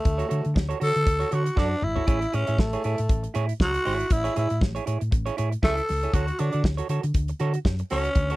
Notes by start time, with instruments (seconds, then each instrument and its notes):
Already playing: tenor saxophone A3
0.03 fingered electric bass D2, muted clean electric guitar stroke, kick, closed hi-hat
0.18 clean electric guitar F#4 A4 C#5, closed hi-hat
0.29 fingered electric bass D3, clean electric guitar F#4 A4 C#5, closed hi-hat
0.43 fingered electric bass D3, muted clean electric guitar stroke, closed hi-hat
0.54 fingered electric bass D2, muted clean electric guitar stroke, kick, snare
0.69 clean electric guitar F#4 A4 C#5, closed hi-hat
0.80 fingered electric bass D3, clean electric guitar F#4 A4 C#5, tenor saxophone A4, open hi-hat
0.94 fingered electric bass D3, muted clean electric guitar stroke, closed hi-hat
1.06 fingered electric bass D2, muted clean electric guitar stroke, kick, closed hi-hat
1.19 clean electric guitar F#4 A4 C#5, closed hi-hat
1.31 fingered electric bass D3, clean electric guitar F#4 A4 C#5, tenor saxophone F#4, closed hi-hat
1.45 muted clean electric guitar stroke, closed hi-hat
1.56 fingered electric bass F#2, tenor saxophone D4, clean electric guitar F#4 A4 D5, kick, snare
1.70 muted clean electric guitar stroke
1.81 fingered electric bass G#1, tenor saxophone E4, muted clean electric guitar stroke, mid tom
1.96 clean electric guitar F#4 A4 C#5, floor tom
2.07 fingered electric bass A1, clean electric guitar E4 G#4 C#5, kick, closed hi-hat
2.22 muted clean electric guitar stroke, closed hi-hat
2.33 fingered electric bass A2, tenor saxophone C#4, clean electric guitar E4 G#4 C#5, closed hi-hat
2.47 fingered electric bass A2, clean electric guitar E4 G#4 E5, closed hi-hat
2.58 fingered electric bass A1, tenor saxophone A3, kick, snare
2.73 clean electric guitar E4 G#4 C#5, closed hi-hat
2.84 fingered electric bass A2, clean electric guitar E4 G#4 C#5, closed hi-hat
2.98 fingered electric bass A2, muted clean electric guitar stroke, closed hi-hat
3.09 fingered electric bass A1, kick, closed hi-hat
3.23 muted clean electric guitar stroke, closed hi-hat
3.34 fingered electric bass A2, clean electric guitar E4 G#4 C#5, closed hi-hat
3.48 muted clean electric guitar stroke, closed hi-hat
3.60 fingered electric bass C#2, tenor saxophone F#4, kick, snare
3.74 muted clean electric guitar stroke, closed hi-hat
3.85 fingered electric bass G#1, clean electric guitar E4 G#4 C#5, open hi-hat
4.00 muted clean electric guitar stroke, closed hi-hat
4.10 fingered electric bass A1, tenor saxophone E4, muted clean electric guitar stroke, kick, closed hi-hat
4.24 clean electric guitar E4 G#4 C#5, closed hi-hat
4.36 fingered electric bass A2, clean electric guitar E4 G#4 C#5, tenor saxophone E4, closed hi-hat
4.50 fingered electric bass A2, muted clean electric guitar stroke, closed hi-hat
4.61 fingered electric bass A1, muted clean electric guitar stroke, kick, snare
4.75 clean electric guitar E4 G#4 C#5, closed hi-hat
4.86 fingered electric bass A2, clean electric guitar E4 G#4 C#5, closed hi-hat
5.00 fingered electric bass A2, muted clean electric guitar stroke, closed hi-hat
5.11 fingered electric bass A1, muted clean electric guitar stroke, kick, closed hi-hat
5.26 clean electric guitar E4 G#4 C#5, closed hi-hat
5.37 fingered electric bass A2, clean electric guitar E4 G#4 C#5, closed hi-hat
5.51 muted clean electric guitar stroke, closed hi-hat
5.63 fingered electric bass C#2, clean electric guitar E4 G#4 E5, tenor saxophone A4, kick, snare
5.77 muted clean electric guitar stroke, closed hi-hat
5.88 fingered electric bass C#2, muted clean electric guitar stroke, snare, open hi-hat
6.03 clean electric guitar E4 G#4 C#5, closed hi-hat
6.14 fingered electric bass D2, clean electric guitar F#4 A4 C#5, tenor saxophone F#4, kick, closed hi-hat
6.28 muted clean electric guitar stroke, closed hi-hat
6.39 fingered electric bass D3, tenor saxophone D4, clean electric guitar F#4 A4 C#5, closed hi-hat
6.53 fingered electric bass D3, clean electric guitar F#4 A4 D5, closed hi-hat
6.64 fingered electric bass D2, kick, snare
6.77 clean electric guitar F#4 A4 C#5, closed hi-hat
6.89 fingered electric bass D3, clean electric guitar F#4 A4 C#5, closed hi-hat
7.03 fingered electric bass D3, muted clean electric guitar stroke, closed hi-hat
7.14 fingered electric bass D2, kick, closed hi-hat
7.28 muted clean electric guitar stroke, closed hi-hat
7.40 fingered electric bass D3, clean electric guitar F#4 A4 C#5, closed hi-hat
7.54 muted clean electric guitar stroke, closed hi-hat
7.65 fingered electric bass F#2, kick, snare
7.79 muted clean electric guitar stroke, closed hi-hat
7.90 fingered electric bass C#2, tenor saxophone C#4, clean electric guitar F#4 A4 C#5, snare, open hi-hat
8.05 muted clean electric guitar stroke, closed hi-hat
8.15 fingered electric bass D2, muted clean electric guitar stroke, kick, closed hi-hat
8.30 clean electric guitar F#4 A4 C#5, closed hi-hat